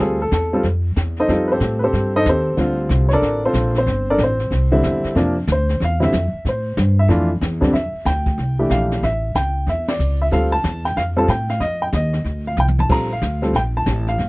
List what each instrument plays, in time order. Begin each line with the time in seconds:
Already playing: upright piano G#4
0.00 upright bass D2, upright piano G3 C4 F4 A4
0.22 upright piano A4
0.31 upright bass E2, upright piano A4, kick, snare, hi-hat pedal
0.53 upright piano G3 C4 F4 A4
0.63 upright bass F2, brush sweep, kick, snare
0.96 upright bass E2, kick, snare, hi-hat pedal
1.17 upright piano D#4 A4 C5 D#5, snare
1.28 upright bass F2, upright piano G3 C4 F4 A4, brush sweep, kick, snare
1.52 upright piano C4 G4 A4 C5
1.60 upright bass A2, kick, snare, hi-hat pedal
1.79 upright piano B4
1.84 upright piano C4 G4 A4 C5
1.93 upright bass G2, brush sweep, kick, snare
2.16 upright piano D#4 A4 C5 D#5
2.25 upright bass D#2, upright piano C5, kick, snare, hi-hat pedal
2.29 upright piano C4 G4 A4
2.57 upright bass D2, upright piano D3 G3 C4 F4, brush sweep, kick, snare
2.89 upright bass C2, kick, snare, hi-hat pedal
3.09 upright piano C#5, snare
3.13 upright piano D4 A4 A#4 D5
3.22 upright bass A1, brush sweep, kick, snare
3.45 upright piano C4 F4 A4 C5
3.53 upright bass A#1, kick, snare, hi-hat pedal
3.75 upright piano C4 C5, snare
3.86 upright bass G1, brush sweep, kick, snare
4.10 upright piano D4 A4 A#4 D5
4.18 upright bass A1, kick, snare, hi-hat pedal
4.23 upright piano C4 C5
4.39 snare
4.51 upright bass C2, brush sweep, kick, snare
4.72 upright piano D3 G3 C4 E4
4.83 upright bass E2, kick, snare, hi-hat pedal
5.04 muted upright bass stroke, snare
5.15 upright bass F2, upright piano C3 F3 A#3 D4, brush sweep, kick, snare
5.47 upright bass D2, kick, snare, hi-hat pedal
5.52 upright piano C5
5.69 snare
5.80 upright bass E2, brush sweep, kick, snare
5.84 upright piano F5
6.00 upright piano D3 G3 C4 E4 E5, snare
6.13 upright bass F2, kick, snare, hi-hat pedal
6.33 muted upright bass stroke
6.45 upright bass A2, upright piano C5, brush sweep, kick, snare
6.77 upright bass G2, kick, snare, hi-hat pedal
6.99 upright piano E5
7.08 upright bass F2, upright piano E3 A3 D4 F4, brush sweep, kick, snare
7.41 upright bass E2, kick, snare, hi-hat pedal
7.61 upright piano F2 D3 G3 C4 D4, kick, snare
7.73 upright bass F2, upright piano E5, brush sweep, kick, snare
7.93 muted upright bass stroke
8.05 upright bass D2, upright piano G5, kick, snare, hi-hat pedal
8.26 kick, snare
8.38 upright bass C2, brush sweep, kick, snare
8.59 upright piano E3 A3 D4 G4
8.70 upright bass A#1, upright piano F5, kick, snare, hi-hat pedal
8.91 snare
9.03 upright bass A1, upright piano E5, brush sweep, kick, snare
9.35 upright bass C#2, upright piano G5, kick, snare, hi-hat pedal
9.67 upright bass E2, upright piano E5, brush sweep, kick, snare
9.88 upright piano D5, snare, ride
9.99 upright bass C#2, hi-hat pedal
10.22 upright piano E5
10.31 upright bass D2, upright piano G3 C4 F4 A4 F5, brush sweep, kick, snare
10.52 upright piano A5
10.64 upright bass E2, kick, snare, hi-hat pedal
10.85 upright piano G5, snare
10.96 upright bass F2, upright piano F5, brush sweep, kick, snare
11.16 upright piano G3 C4 F4 A4 A5
11.28 upright bass A2, upright piano G5, kick, snare, hi-hat pedal
11.49 upright piano F5, snare
11.60 upright bass F2, upright piano D#5, brush sweep, kick, snare
11.82 upright piano G5
11.93 upright bass D#2, upright piano D#5, kick, snare, hi-hat pedal
12.13 snare
12.24 upright bass D2, brush sweep, kick, snare
12.47 upright piano F5
12.57 upright bass C2, upright piano G5, hi-hat pedal, mid tom
12.68 mid tom
12.79 upright piano A5, mid tom
12.89 upright bass A#1, upright piano G3 C4 F4 A4 A#5, brush sweep, kick, snare, crash
13.13 upright piano F5
13.22 upright bass D2, kick, snare, hi-hat pedal
13.42 upright piano G3 C4 F4 A4, snare
13.53 upright bass A#1, upright piano G5, brush sweep, kick, snare
13.77 upright piano A5
13.86 upright bass A1, kick, snare, hi-hat pedal
14.07 upright piano F5, snare
14.18 upright bass G1, brush sweep, kick, snare